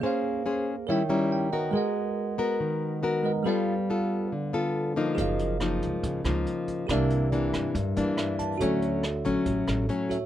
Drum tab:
HH |--------|--------|--------|xxxxxxxx|
SD |--------|--------|--------|--r--r--|
BD |--------|--------|--------|o--oo--o|

HH |xxxxxxxx|xxxxxxxx|
SD |r--r--r-|--r--r--|
BD |o--oo--o|o--oo--o|